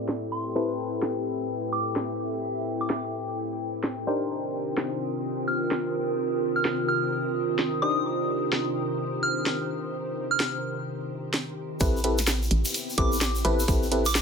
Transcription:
0.00 4.03 A2 medium
0.00 0.53 C4 medium
0.00 4.03 C4 medium
0.00 0.53 E4 medium
0.00 4.03 E4 medium
0.00 4.07 E4 medium
0.00 0.53 G4 medium
0.00 4.03 G4 medium
0.00 0.53 A4 medium
0.00 4.07 A4 medium
0.00 0.52 B4 medium
0.00 0.53 B4 medium
0.00 1.80 D5 medium
0.00 11.81 G5 medium
0.09 snare loud
0.32 0.70 C6 medium
0.55 4.05 C4 medium
0.55 4.05 E4 medium
0.55 4.05 G4 medium
0.55 4.05 A4 medium
0.55 4.05 B4 medium
1.02 snare loud
1.66 4.07 E5 medium
1.73 1.93 D6 medium
1.96 snare loud
2.81 2.99 D6 medium
2.90 snare loud
3.84 snare loud
4.07 11.77 C3 medium
4.07 11.77 D#3 medium
4.07 11.81 C4 medium
4.07 7.80 D4 medium
4.07 7.80 D#4 medium
4.07 11.77 G4 medium
4.07 7.80 G4 medium
4.07 11.77 A#4 medium
4.07 7.80 A#4 medium
4.07 11.77 C5 medium
4.07 7.80 C5 medium
4.40 11.81 F4 medium
4.52 11.81 D#6 loud
4.77 snare loud
4.84 8.70 A#4 medium
5.48 5.68 F6 medium
5.71 snare loud
6.56 6.74 F6 medium
6.65 snare loud
6.88 7.08 F6 medium
7.59 snare loud
7.82 11.55 D4 medium
7.82 11.55 D#4 medium
7.82 11.55 G4 medium
7.82 11.55 A#4 medium
7.82 11.55 C5 medium
7.82 8.20 D#6 medium
8.53 11.81 C5 medium
8.53 snare loud
9.23 9.43 F6 medium
9.46 snare loud
10.31 10.49 F6 medium
10.40 snare loud
11.34 snare loud
11.80 12.49 A1 loud
11.80 14.22 B3 medium
11.80 14.22 C4 medium
11.80 12.00 C4 medium
11.80 14.22 E4 medium
11.80 12.00 E4 medium
11.80 14.22 G4 medium
11.80 12.00 G4 medium
11.80 12.00 A4 medium
11.80 12.00 B4 loud
11.80 kick loud
11.80 closed hi-hat medium
11.80 shaker medium
11.97 shaker soft
12.04 12.18 C4 medium
12.04 12.18 E4 medium
12.04 12.18 G4 medium
12.04 12.18 A4 medium
12.04 12.18 B4 medium
12.04 open hi-hat loud
12.18 snare soft
12.18 closed hi-hat medium
12.18 shaker medium
12.27 snare loud
12.27 closed hi-hat medium
12.27 shaker medium
12.42 shaker soft
12.51 12.63 A1 loud
12.51 open hi-hat loud
12.65 closed hi-hat soft
12.65 shaker medium
12.74 closed hi-hat medium
12.74 shaker medium
12.89 shaker soft
12.98 13.43 A1 medium
12.98 13.17 C4 medium
12.98 13.17 E4 medium
12.98 13.17 G4 medium
12.98 13.17 A4 medium
12.98 13.17 B4 medium
12.98 13.18 D6 medium
12.98 kick loud
12.98 open hi-hat loud
13.12 shaker medium
13.21 snare loud
13.21 closed hi-hat medium
13.21 shaker medium
13.35 shaker soft
13.45 13.66 A1 loud
13.45 13.64 C4 loud
13.45 13.64 E4 medium
13.45 13.64 G4 medium
13.45 13.64 A4 medium
13.45 13.64 B4 loud
13.45 open hi-hat loud
13.60 shaker medium
13.68 14.22 A1 loud
13.68 13.87 C4 medium
13.68 13.87 E4 medium
13.68 13.87 G4 medium
13.68 13.87 A4 medium
13.68 13.87 B4 loud
13.68 kick loud
13.68 closed hi-hat medium
13.68 shaker medium
13.83 shaker soft
13.92 14.05 C4 medium
13.92 14.05 E4 medium
13.92 14.05 G4 medium
13.92 14.05 A4 medium
13.92 14.05 B4 medium
13.92 open hi-hat loud
14.05 14.22 D6 medium
14.05 closed hi-hat medium
14.05 shaker medium
14.15 snare loud
14.15 closed hi-hat medium
14.15 shaker medium

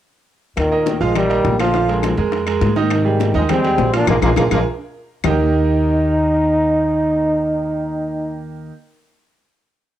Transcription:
0.57 0.98 D#2 medium
0.57 0.99 A#2 medium
0.57 0.98 D#3 medium
0.57 high bongo medium
0.57 high conga soft
0.57 high timbale medium
0.57 claves medium
0.71 0.95 A#3 medium
0.71 0.96 A#4 medium
0.71 0.96 D#5 medium
0.71 high conga soft
0.86 high bongo medium
0.86 high conga loud
0.86 high timbale medium
1.01 1.42 A#1 medium
1.01 1.13 F3 medium
1.01 1.17 F3 medium
1.01 1.16 G#3 medium
1.01 1.13 F4 medium
1.01 1.13 F5 medium
1.01 high conga soft
1.15 1.58 D#3 medium
1.15 1.57 G3 loud
1.15 1.27 A#3 medium
1.15 1.28 A#4 medium
1.15 1.28 D#5 medium
1.15 high bongo medium
1.15 high conga soft
1.15 low conga medium
1.15 high timbale medium
1.15 claves medium
1.30 1.54 A#3 medium
1.30 1.54 A#4 medium
1.30 1.54 D#5 medium
1.30 high conga soft
1.30 high timbale medium
1.45 2.12 A#1 medium
1.45 high bongo medium
1.45 low bongo medium
1.45 high conga medium
1.60 2.15 D3 medium
1.60 1.72 F3 medium
1.60 2.14 F3 medium
1.60 1.72 F4 medium
1.60 1.72 F5 medium
1.60 high conga medium
1.60 high timbale medium
1.60 claves medium
1.74 1.86 F3 medium
1.74 1.86 F4 medium
1.74 1.86 F5 medium
1.74 high bongo medium
1.74 high conga soft
1.88 2.12 G#3 medium
1.88 2.12 G#4 medium
1.88 2.13 A#4 medium
1.88 high bongo soft
1.88 high conga soft
1.88 high timbale medium
2.03 high bongo medium
2.03 high conga medium
2.03 high timbale medium
2.03 claves medium
2.17 2.58 F2 medium
2.17 2.42 G#3 medium
2.17 2.42 G#4 medium
2.17 2.42 A#4 medium
2.17 high bongo soft
2.17 high conga soft
2.32 high bongo medium
2.32 high conga soft
2.32 high timbale medium
2.46 2.71 G#3 medium
2.46 2.71 G#4 medium
2.46 2.71 A#4 medium
2.46 high bongo soft
2.46 high conga soft
2.46 high timbale medium
2.46 claves medium
2.61 3.29 G#2 loud
2.61 high bongo medium
2.61 low bongo medium
2.61 high conga medium
2.61 high timbale medium
2.76 3.00 D#3 medium
2.76 3.00 D#4 medium
2.76 3.01 D#5 medium
2.76 high conga medium
2.90 3.33 C3 medium
2.90 3.33 D#3 medium
2.90 high bongo medium
2.90 high conga soft
2.90 high timbale medium
2.90 claves medium
3.04 3.29 G3 medium
3.04 3.29 G4 medium
3.04 3.29 G#4 medium
3.04 high conga soft
3.20 high bongo medium
3.20 high conga loud
3.20 high timbale medium
3.34 3.75 D#2 medium
3.34 3.47 D#3 medium
3.34 3.42 F3 medium
3.34 3.43 G#3 medium
3.34 3.47 D#4 medium
3.34 3.47 D#5 medium
3.49 3.61 G3 medium
3.49 3.91 G#3 medium
3.49 3.91 C4 loud
3.49 3.61 G4 medium
3.49 3.62 G#4 medium
3.49 high bongo medium
3.49 high conga soft
3.49 low conga medium
3.49 high timbale loud
3.49 claves medium
3.64 3.88 G3 medium
3.64 3.88 G4 medium
3.64 3.88 G#4 medium
3.64 high timbale medium
3.78 4.05 A#1 medium
3.78 high bongo medium
3.78 low bongo medium
3.78 high conga medium
3.78 low timbale medium
3.93 4.05 F3 medium
3.93 4.08 A#3 medium
3.93 4.08 D4 loud
3.93 4.05 F4 medium
3.93 4.05 F5 medium
3.93 high conga medium
3.93 high timbale loud
3.93 claves medium
4.07 4.18 A#1 loud
4.07 4.16 F3 medium
4.07 4.15 G#3 medium
4.07 4.16 A#3 loud
4.07 4.17 F4 medium
4.07 4.17 G#4 medium
4.07 4.17 A#4 medium
4.07 high bongo loud
4.07 low conga loud
4.07 high timbale loud
4.07 claves medium
4.22 4.33 A#1 medium
4.22 4.30 F3 loud
4.22 4.30 G#3 loud
4.22 4.29 A#3 loud
4.22 4.31 F4 medium
4.22 4.31 G#4 loud
4.22 4.32 A#4 medium
4.22 high bongo medium
4.22 low conga medium
4.22 high timbale loud
4.22 claves medium
4.36 4.48 A#1 loud
4.36 4.44 F3 medium
4.36 4.44 G#3 medium
4.36 4.45 A#3 loud
4.36 4.46 F4 loud
4.36 4.46 G#4 loud
4.36 4.46 A#4 medium
4.36 high bongo loud
4.36 low conga loud
4.36 high timbale loud
4.36 claves loud
4.51 4.62 A#1 loud
4.51 4.60 F3 medium
4.51 4.60 G#3 medium
4.51 4.60 A#3 loud
4.51 4.61 F4 medium
4.51 4.61 G#4 loud
4.51 4.61 A#4 loud
4.51 high bongo medium
4.51 low conga loud
4.51 high timbale medium
4.51 claves loud
5.24 8.70 D#2 loud
5.24 8.70 D#3 medium
5.24 8.70 A#3 medium
5.24 8.70 D#4 medium
5.24 8.34 D#4 medium
5.24 8.70 G4 medium
5.24 8.70 A#4 medium
5.24 8.70 D#5 medium
5.24 low bongo loud
5.24 low conga loud
5.24 low timbale medium
5.24 claves loud

